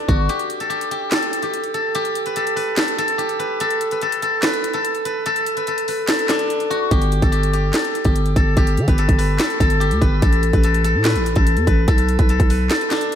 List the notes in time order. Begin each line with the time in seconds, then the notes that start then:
Already playing: D4 A4 B4
0.08 G1 F#4, kick, closed hi-hat
0.29 G4, closed hi-hat
0.39 closed hi-hat
0.50 closed hi-hat
0.60 A4, closed hi-hat
0.70 G4, closed hi-hat
0.81 closed hi-hat
0.91 G4, closed hi-hat
1.11 A4, snare, clap, closed hi-hat
1.23 closed hi-hat
1.33 closed hi-hat
1.42 G4, closed hi-hat
1.54 closed hi-hat
1.64 closed hi-hat
1.74 A4, closed hi-hat
1.95 G4, closed hi-hat
2.05 closed hi-hat
2.15 closed hi-hat
2.26 B4, closed hi-hat
2.36 A4, closed hi-hat
2.47 closed hi-hat
2.56 B4, open hi-hat
2.77 A4, snare, clap, closed hi-hat
2.88 closed hi-hat
2.98 A4, closed hi-hat
3.08 closed hi-hat
3.18 G4, closed hi-hat
3.29 closed hi-hat
3.39 B4, closed hi-hat
3.60 A4, closed hi-hat
3.70 closed hi-hat
3.81 closed hi-hat
3.91 B4, closed hi-hat
4.01 A4, closed hi-hat
4.12 closed hi-hat
4.22 A4, closed hi-hat
4.42 B4, snare, clap, closed hi-hat
4.54 closed hi-hat
4.64 closed hi-hat
4.73 A4, closed hi-hat
4.85 closed hi-hat
4.95 closed hi-hat
5.05 B4, closed hi-hat
5.26 A4, closed hi-hat
5.36 closed hi-hat
5.46 closed hi-hat
5.57 B4, closed hi-hat
5.67 A4, closed hi-hat
5.78 closed hi-hat
5.88 B4, open hi-hat
6.08 A4, snare, clap, closed hi-hat
6.19 closed hi-hat
6.29 D4, snare, clap, closed hi-hat
6.39 closed hi-hat
6.50 closed hi-hat
6.60 closed hi-hat
6.70 F#4, closed hi-hat
6.91 G1 G4, kick, closed hi-hat
7.02 closed hi-hat
7.12 closed hi-hat
7.22 G1 A4, kick, closed hi-hat
7.32 G4, closed hi-hat
7.43 closed hi-hat
7.53 G4, closed hi-hat
7.74 A4, snare, clap, closed hi-hat
7.85 closed hi-hat
7.95 closed hi-hat
8.05 G1 G4, kick, closed hi-hat
8.16 closed hi-hat
8.26 closed hi-hat
8.36 G1 A4, kick, closed hi-hat
8.57 G1 G4, kick, closed hi-hat
8.67 closed hi-hat
8.77 D3, closed hi-hat
8.88 G1 B4, kick, closed hi-hat
8.98 A4, closed hi-hat
9.09 G1, kick, closed hi-hat
9.18 B4, open hi-hat
9.39 A4, snare, clap, closed hi-hat
9.50 closed hi-hat
9.60 G1 A4, kick, closed hi-hat
9.70 closed hi-hat
9.80 G4, closed hi-hat
9.91 D2, closed hi-hat
10.01 G1 B4, kick, closed hi-hat
10.22 A1 A4, kick, closed hi-hat
10.33 closed hi-hat
10.43 closed hi-hat
10.53 A1 B4, kick, closed hi-hat
10.63 A4, closed hi-hat
10.74 closed hi-hat
10.84 A4, closed hi-hat
10.95 A2
11.05 B4, snare, clap, closed hi-hat
11.15 A1, closed hi-hat
11.26 closed hi-hat
11.36 A1 A4, kick, closed hi-hat
11.47 closed hi-hat
11.57 E2, closed hi-hat
11.67 A1 B4, kick, closed hi-hat
11.88 B1 A4, kick, closed hi-hat
11.98 closed hi-hat
12.09 closed hi-hat
12.19 B1 B4, kick, closed hi-hat
12.29 A4, closed hi-hat
12.40 B1, kick, closed hi-hat
12.50 B4, open hi-hat
12.70 A4, snare, clap, closed hi-hat
12.81 closed hi-hat
12.91 D4, snare, clap, closed hi-hat
13.01 closed hi-hat